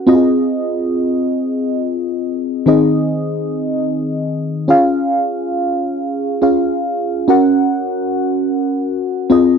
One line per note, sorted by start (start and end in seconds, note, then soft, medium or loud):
0.07 2.34 C4 medium
0.07 2.34 F4 medium
0.07 0.15 F#4 medium
0.07 2.35 D#5 medium
0.15 2.38 G#4 medium
2.66 4.65 D#3 medium
2.66 4.65 C4 medium
2.66 4.65 D#4 medium
2.66 4.66 G#4 medium
2.66 4.66 D#5 medium
4.68 6.38 C#4 medium
4.68 6.39 F4 medium
4.68 6.39 G#4 medium
4.68 6.40 F5 medium
6.42 7.27 C#4 medium
6.42 7.29 F4 medium
6.42 7.29 G#4 medium
6.42 7.29 F5 medium
7.28 9.26 C#4 medium
7.28 9.27 F#4 medium
7.28 9.27 A#4 medium
7.28 9.27 F#5 medium
9.30 9.58 C4 medium
9.30 9.58 F4 medium
9.30 9.58 G#4 medium
9.30 9.58 D#5 medium